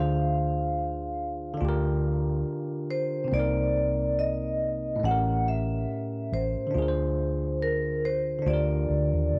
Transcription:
0.00 1.57 D2 medium
0.00 1.52 D3 medium
0.00 1.55 D4 medium
0.00 1.59 F4 medium
0.00 1.59 G#4 medium
0.00 1.61 C5 medium
0.00 1.57 F5 medium
1.53 3.25 D3 medium
1.57 3.27 D4 medium
1.57 3.28 F4 medium
1.62 2.43 D2 loud
1.62 3.31 G4 medium
1.69 3.32 A#4 medium
2.90 3.34 C5 medium
3.24 4.96 C3 medium
3.24 4.98 C4 medium
3.32 4.99 C2 loud
3.32 5.00 A#3 medium
3.32 5.02 D#4 medium
3.32 4.21 D5 loud
3.39 5.04 A#4 medium
4.19 5.00 D#5 medium
4.96 6.67 A2 medium
4.96 6.69 A3 medium
5.03 5.85 A1 loud
5.03 6.71 C#4 medium
5.03 6.73 G4 medium
5.03 5.44 F#5 loud
5.11 6.75 A#4 medium
5.48 6.35 E5 medium
6.32 6.55 A1 medium
6.32 7.65 C5 medium
6.67 8.37 D3 medium
6.67 8.41 D4 medium
6.75 8.42 D2 loud
6.75 8.42 F4 medium
6.75 8.44 G#4 medium
6.82 6.86 A#4 medium
6.88 8.50 C5 medium
7.63 8.05 A#4 medium
8.05 8.48 C5 medium
8.39 9.39 D3 medium
8.39 9.39 D4 medium
8.46 8.87 D2 loud
8.46 9.39 F4 medium
8.46 9.39 G4 medium
8.46 9.39 D5 medium
8.54 9.39 A#4 medium
8.89 9.12 D2 medium
9.14 9.31 D#2 medium
9.33 9.39 F1 medium

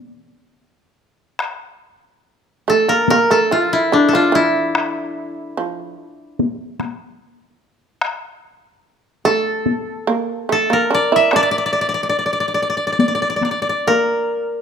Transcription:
0.00 0.47 D4 medium
0.00 0.45 D5 medium
1.39 taiko rim medium
2.68 2.87 A3 medium
2.68 2.95 A4 medium
2.89 3.07 A#3 medium
2.89 3.10 A#4 medium
3.08 3.29 A#3 medium
3.08 3.37 A#4 medium
3.08 taiko high medium
3.31 3.49 A3 medium
3.31 4.08 A4 medium
3.51 3.89 F3 medium
3.51 3.79 F4 medium
3.73 4.21 E4 medium
3.92 4.11 D3 medium
3.92 6.36 D4 medium
4.09 5.99 A4 medium
4.13 4.32 F3 medium
4.13 4.41 F4 medium
4.32 5.54 E3 medium
4.32 6.62 E4 medium
4.75 taiko rim medium
5.57 5.96 F3 medium
6.40 taiko high medium
6.80 taiko rim soft
6.80 taiko high soft
8.01 taiko rim medium
9.25 10.03 A3 medium
9.25 10.52 A4 medium
9.66 taiko high medium
10.07 10.45 A#3 medium
10.49 10.68 A3 medium
10.49 10.79 A4 loud
10.70 10.89 A#3 medium
10.70 12.57 A#4 medium
10.91 11.09 D4 medium
10.91 11.36 D5 medium
11.12 11.31 E4 medium
11.12 12.65 E5 medium
11.31 13.85 D4 medium
11.31 taiko rim medium
11.36 11.42 D5 medium
11.43 11.51 D5 medium
11.51 11.58 D5 medium
11.58 11.65 D5 medium
11.66 11.72 D5 medium
11.73 11.81 D5 medium
11.81 11.88 D5 medium
11.89 11.94 D5 medium
11.94 12.03 D5 medium
12.03 12.09 D5 medium
12.09 12.18 D5 medium
12.19 12.25 D5 medium
12.26 12.32 D5 medium
12.33 12.40 D5 soft
12.40 12.48 D5 medium
12.48 12.54 D5 soft
12.54 12.62 D5 medium
12.62 12.69 D5 soft
12.70 12.77 D5 medium
12.77 12.87 D5 soft
12.87 12.92 D5 medium
12.92 12.99 D5 soft
12.99 13.08 D5 medium
12.99 taiko high medium
13.08 13.14 D5 medium
13.15 13.22 D5 medium
13.22 13.29 D5 medium
13.30 13.36 D5 medium
13.36 13.44 D5 soft
13.42 13.51 D5 medium
13.42 taiko rim soft
13.42 taiko high soft
13.51 13.62 D5 soft
13.62 13.69 D5 medium
13.69 14.62 D5 medium
13.87 14.62 A#3 medium
13.87 14.62 A#4 medium

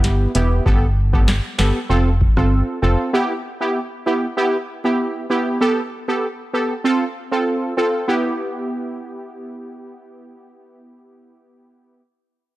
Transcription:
0.00 0.27 G1 medium
0.00 0.31 B3 medium
0.00 0.32 E4 medium
0.00 0.32 G4 medium
0.00 closed hi-hat medium
0.04 snare medium
0.35 0.60 E1 medium
0.35 0.64 B3 medium
0.35 0.64 E4 medium
0.35 0.64 G4 medium
0.35 closed hi-hat medium
0.66 1.40 G1 loud
0.66 0.86 B3 loud
0.66 0.86 G4 medium
0.66 0.86 A4 loud
0.66 kick loud
1.13 1.32 B3 medium
1.13 1.32 G4 medium
1.13 1.32 A4 medium
1.13 kick loud
1.28 snare loud
1.28 clap medium
1.58 1.72 G1 medium
1.58 1.78 B3 medium
1.58 1.78 G4 medium
1.58 1.79 A4 medium
1.58 snare loud
1.58 clap medium
1.89 2.28 F1 medium
1.89 2.09 C4 medium
1.89 2.09 F4 medium
1.89 2.10 A4 loud
2.21 kick medium
2.37 2.62 G1 medium
2.37 2.79 C4 medium
2.37 2.79 F4 medium
2.37 2.79 A4 medium
2.37 cross-stick medium
2.82 2.96 F1 medium
2.82 3.11 C4 medium
2.82 3.11 F4 medium
2.82 3.11 A4 medium
3.13 3.33 B3 loud
3.13 3.33 E4 medium
3.13 3.33 G4 loud
3.60 3.79 B3 medium
3.60 3.79 E4 medium
3.60 3.79 G4 medium
4.06 4.26 B3 medium
4.06 4.26 E4 medium
4.06 4.26 G4 medium
4.37 4.57 B3 medium
4.37 4.57 E4 medium
4.37 4.57 G4 loud
4.84 5.26 B3 medium
4.84 5.26 E4 medium
4.84 5.27 G4 medium
5.30 5.58 B3 medium
5.30 5.59 E4 medium
5.30 5.59 G4 medium
5.61 5.81 B3 medium
5.61 5.81 G4 medium
5.61 5.81 A4 loud
6.08 6.26 B3 medium
6.08 6.27 G4 medium
6.08 6.27 A4 medium
6.53 6.73 B3 medium
6.53 6.73 G4 medium
6.53 6.74 A4 medium
6.84 7.04 C4 medium
6.84 7.04 F4 medium
6.84 7.04 A4 loud
7.32 7.74 C4 medium
7.32 7.74 F4 medium
7.32 7.74 A4 medium
7.77 8.06 C4 medium
7.77 8.06 F4 medium
7.77 8.06 A4 medium
8.08 12.01 B3 medium
8.08 12.02 E4 medium
8.08 12.02 G4 loud

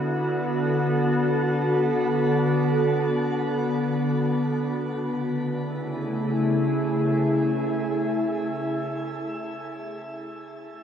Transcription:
0.00 4.87 D3 medium
0.00 4.88 B3 medium
0.00 0.31 E4 medium
0.00 4.88 F#4 medium
0.00 4.88 A4 medium
4.90 9.46 C#3 medium
5.07 9.47 A3 medium
5.19 9.46 E4 medium
5.31 9.45 G#4 medium

